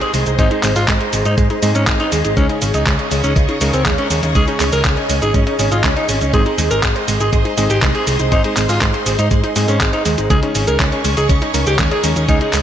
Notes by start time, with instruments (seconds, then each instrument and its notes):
Already playing: electric grand piano G#2 C4 D#4 G#4 D#5, string machine G#4 C5 D#5 C6
0.01 alto saxophone G#4, synth arpeggio sound C5, closed hi-hat
0.14 picked electric bass C2, synth arpeggio sound G#3, alto saxophone G#3, open hi-hat, cabasa
0.26 picked electric bass C2, alto saxophone G#3, synth arpeggio sound D#4, closed hi-hat, cabasa
0.38 picked electric bass G#1, electric grand piano G#2 C4 D#4 G#4 C5, synth arpeggio sound G#3, alto saxophone D#4, string machine A#5, kick, closed hi-hat, cabasa
0.51 alto saxophone G#3, synth arpeggio sound D#4, closed hi-hat
0.63 picked electric bass G#1, synth arpeggio sound G#3, alto saxophone G#3, clap, open hi-hat, cabasa
0.76 picked electric bass G#1, alto saxophone F4, synth arpeggio sound G#4, open hi-hat, cabasa
0.88 picked electric bass G#1, alto saxophone G#3, synth arpeggio sound G#3, kick, clap, closed hi-hat, cabasa
1.01 alto saxophone G#3, synth arpeggio sound C5, closed hi-hat
1.13 picked electric bass G#1, alto saxophone G#3, synth arpeggio sound G#3, open hi-hat, cabasa
1.25 picked electric bass G#2, alto saxophone D#4, synth arpeggio sound D#4, closed hi-hat, cabasa
1.38 picked electric bass G#2, alto saxophone G#3, synth arpeggio sound G#3, kick, closed hi-hat, cabasa
1.50 alto saxophone G#3, synth arpeggio sound D#4, closed hi-hat
1.62 electric grand piano G#2 C4 D#4 G#4 D#5, picked electric bass G#2, alto saxophone G#3, synth arpeggio sound G#3, open hi-hat, cabasa
1.75 picked electric bass G#2, alto saxophone C#4, synth arpeggio sound G#4, closed hi-hat, cabasa
1.87 picked electric bass G#1, alto saxophone G#3, synth arpeggio sound G#3, kick, clap, closed hi-hat, cabasa
2.00 alto saxophone D#4, synth arpeggio sound C5, closed hi-hat
2.12 picked electric bass D#2, synth arpeggio sound G#3, alto saxophone G#3, open hi-hat, cabasa
2.24 picked electric bass G#1, alto saxophone G#3, synth arpeggio sound D#4, closed hi-hat, cabasa
2.37 picked electric bass C#2, electric grand piano C#3 G#3 C#4 D#4 G#4, synth arpeggio sound G#3, alto saxophone C#4, string machine C#5 C#6, kick, closed hi-hat, cabasa
2.49 alto saxophone C#3, synth arpeggio sound D#4, closed hi-hat
2.61 picked electric bass G#1, alto saxophone C#3, synth arpeggio sound G#3, open hi-hat, cabasa
2.74 picked electric bass C#2, alto saxophone D#4, synth arpeggio sound G#4, closed hi-hat, cabasa
2.86 picked electric bass C#2, alto saxophone C#3, synth arpeggio sound G#3, kick, clap, closed hi-hat, cabasa
2.99 alto saxophone C#3, synth arpeggio sound C#5, closed hi-hat
3.11 picked electric bass C#2, alto saxophone C#3, synth arpeggio sound G#3, open hi-hat, cabasa
3.23 picked electric bass C#2, alto saxophone C#4, synth arpeggio sound D#4, closed hi-hat, cabasa
3.36 picked electric bass C#2, alto saxophone C#3, synth arpeggio sound G#3, kick, closed hi-hat, cabasa
3.48 alto saxophone C#3, synth arpeggio sound D#4, closed hi-hat
3.61 picked electric bass C#2, electric grand piano C#3 G#3 C#4 D#4 A#4, alto saxophone C#3, synth arpeggio sound G#3, open hi-hat, cabasa
3.73 picked electric bass C#2, alto saxophone C4, synth arpeggio sound G#4, closed hi-hat, cabasa
3.86 picked electric bass D#2, alto saxophone C#3, synth arpeggio sound G#3, kick, clap, closed hi-hat, cabasa
3.98 alto saxophone C#4, synth arpeggio sound C#5, closed hi-hat
4.10 picked electric bass D#2, alto saxophone C#3, synth arpeggio sound G#3, open hi-hat, cabasa
4.23 picked electric bass D#2, alto saxophone C#3, synth arpeggio sound D#4, closed hi-hat, cabasa
4.35 picked electric bass C#2, electric grand piano C#3 G#3 C#4 D#4 G#4, synth arpeggio sound G#3, alto saxophone G#4, kick, closed hi-hat, cabasa
4.47 alto saxophone C#4, synth arpeggio sound D#4, closed hi-hat
4.60 picked electric bass C#2, synth arpeggio sound G#3, alto saxophone C#4, clap, open hi-hat, cabasa
4.72 picked electric bass C#2, synth arpeggio sound G#4, alto saxophone A#4, open hi-hat, cabasa
4.85 picked electric bass C#2, synth arpeggio sound G#3, alto saxophone C#4, kick, clap, closed hi-hat, cabasa
4.97 alto saxophone C#4, synth arpeggio sound C#5, closed hi-hat
5.10 picked electric bass C#2, synth arpeggio sound G#3, alto saxophone C#4, open hi-hat, cabasa
5.22 picked electric bass G#1, synth arpeggio sound D#4, alto saxophone G#4, closed hi-hat, cabasa
5.34 picked electric bass G#1, synth arpeggio sound G#3, alto saxophone C#4, kick, closed hi-hat, cabasa
5.47 alto saxophone C#4, synth arpeggio sound D#4, closed hi-hat
5.59 picked electric bass G#1, electric grand piano C#3 G#3 C#4 D#4 G#4, synth arpeggio sound G#3, alto saxophone C#4, open hi-hat, cabasa
5.71 picked electric bass G#1, alto saxophone F4, synth arpeggio sound G#4, closed hi-hat, cabasa
5.84 picked electric bass C#2, electric grand piano C#3 G#3 C#4 D#4 G#4, synth arpeggio sound G#3, alto saxophone C#4, kick, clap, closed hi-hat, cabasa
5.96 alto saxophone D#4, synth arpeggio sound C#5, closed hi-hat
6.09 picked electric bass G#1, synth arpeggio sound G#3, alto saxophone C#4, open hi-hat, cabasa
6.21 picked electric bass C#2, alto saxophone C#4, synth arpeggio sound D#4, closed hi-hat, cabasa
6.33 picked electric bass G#1, electric grand piano G#2 C4 D#4 G#4 C5, synth arpeggio sound G#3, alto saxophone G#4, string machine C5 C6, kick, closed hi-hat, cabasa
6.46 alto saxophone G#3, synth arpeggio sound D#4, closed hi-hat
6.58 picked electric bass D#2, alto saxophone G#3, synth arpeggio sound G#3, open hi-hat, cabasa
6.71 picked electric bass G#1, synth arpeggio sound G#4, alto saxophone A#4, closed hi-hat, cabasa
6.83 picked electric bass G#1, synth arpeggio sound G#3, alto saxophone G#3, kick, clap, closed hi-hat, cabasa
6.96 alto saxophone G#3, synth arpeggio sound C5, closed hi-hat
7.08 picked electric bass G#1, synth arpeggio sound G#3, alto saxophone G#3, open hi-hat, cabasa
7.20 picked electric bass G#1, synth arpeggio sound D#4, alto saxophone G#4, closed hi-hat, cabasa
7.33 picked electric bass G#1, synth arpeggio sound G#3, alto saxophone G#3, kick, closed hi-hat, cabasa
7.45 alto saxophone G#3, synth arpeggio sound D#4, closed hi-hat
7.57 picked electric bass G#1, electric grand piano G#2 C4 D#4 G#4 D#5, synth arpeggio sound G#3, alto saxophone G#3, open hi-hat, cabasa
7.70 picked electric bass G#1, alto saxophone G4, synth arpeggio sound G#4, closed hi-hat, cabasa
7.82 picked electric bass C2, synth arpeggio sound G#3, alto saxophone G#3, kick, clap, closed hi-hat, cabasa
7.95 alto saxophone G#4, synth arpeggio sound C5, closed hi-hat
8.07 picked electric bass C2, synth arpeggio sound G#3, alto saxophone G#3, open hi-hat, cabasa
8.19 picked electric bass C2, alto saxophone G#3, synth arpeggio sound D#4, closed hi-hat, cabasa
8.32 picked electric bass G#1, electric grand piano G#2 C4 D#4 G#4 C5, synth arpeggio sound G#3, alto saxophone D#4, kick, closed hi-hat, cabasa
8.44 alto saxophone G#3, synth arpeggio sound D#4, closed hi-hat
8.57 picked electric bass G#1, synth arpeggio sound G#3, alto saxophone G#3, clap, open hi-hat, cabasa
8.69 picked electric bass G#1, alto saxophone F4, synth arpeggio sound G#4, open hi-hat, cabasa
8.81 picked electric bass G#1, synth arpeggio sound G#3, alto saxophone G#3, kick, clap, closed hi-hat, cabasa
8.94 alto saxophone G#3, synth arpeggio sound C5, closed hi-hat
9.06 picked electric bass G#1, synth arpeggio sound G#3, alto saxophone G#3, open hi-hat, cabasa
9.19 picked electric bass G#2, alto saxophone D#4, synth arpeggio sound D#4, closed hi-hat, cabasa
9.31 picked electric bass G#2, alto saxophone G#3, synth arpeggio sound G#3, kick, closed hi-hat, cabasa
9.43 alto saxophone G#3, synth arpeggio sound D#4, closed hi-hat
9.56 electric grand piano G#2 C4 D#4 G#4 D#5, picked electric bass G#2, synth arpeggio sound G#3, alto saxophone G#3, open hi-hat, cabasa
9.68 picked electric bass G#2, alto saxophone C#4, synth arpeggio sound G#4, closed hi-hat, cabasa
9.81 picked electric bass G#1, synth arpeggio sound G#3, alto saxophone G#3, kick, clap, closed hi-hat, cabasa
9.93 alto saxophone D#4, synth arpeggio sound C5, closed hi-hat
10.05 picked electric bass D#2, synth arpeggio sound G#3, alto saxophone G#3, open hi-hat, cabasa
10.18 picked electric bass G#1, alto saxophone G#3, synth arpeggio sound D#4, closed hi-hat, cabasa
10.30 picked electric bass C#2, electric grand piano C#3 G#3 C#4 D#4 G#4, synth arpeggio sound G#3, alto saxophone G#4, string machine G#4 C#5 D#5 C#6, kick, closed hi-hat, cabasa
10.43 alto saxophone C#4, synth arpeggio sound D#4, closed hi-hat
10.55 picked electric bass G#1, synth arpeggio sound G#3, alto saxophone C#4, open hi-hat, cabasa
10.67 picked electric bass C#2, synth arpeggio sound G#4, alto saxophone A#4, closed hi-hat, cabasa
10.80 picked electric bass C#2, synth arpeggio sound G#3, alto saxophone C#4, kick, clap, closed hi-hat, cabasa
10.92 alto saxophone C#4, synth arpeggio sound C#5, closed hi-hat
11.05 picked electric bass C#2, synth arpeggio sound G#3, alto saxophone C#4, open hi-hat, cabasa
11.17 picked electric bass C#2, synth arpeggio sound D#4, alto saxophone G#4, closed hi-hat, cabasa
11.29 picked electric bass C#2, synth arpeggio sound G#3, alto saxophone C#4, kick, closed hi-hat, cabasa
11.42 alto saxophone C#4, synth arpeggio sound D#4, closed hi-hat
11.54 picked electric bass C#2, electric grand piano C#3 G#3 C#4 D#4 A#4, synth arpeggio sound G#3, alto saxophone C#4, open hi-hat, cabasa
11.67 picked electric bass C#2, alto saxophone G4, synth arpeggio sound G#4, closed hi-hat, cabasa
11.79 picked electric bass D#2, synth arpeggio sound G#3, alto saxophone C#4, kick, clap, closed hi-hat, cabasa
11.91 alto saxophone G#4, synth arpeggio sound C#5, closed hi-hat
12.04 picked electric bass D#2, synth arpeggio sound G#3, alto saxophone C#4, open hi-hat, cabasa
12.16 picked electric bass D#2, alto saxophone C#4, synth arpeggio sound D#4, closed hi-hat, cabasa
12.29 picked electric bass C#2, electric grand piano C#3 G#3 C#4 D#4 G#4, synth arpeggio sound G#3, alto saxophone D#4, kick, closed hi-hat, cabasa
12.41 alto saxophone G#3, synth arpeggio sound D#4, closed hi-hat
12.53 picked electric bass C#2, synth arpeggio sound G#3, alto saxophone G#3, clap, open hi-hat, cabasa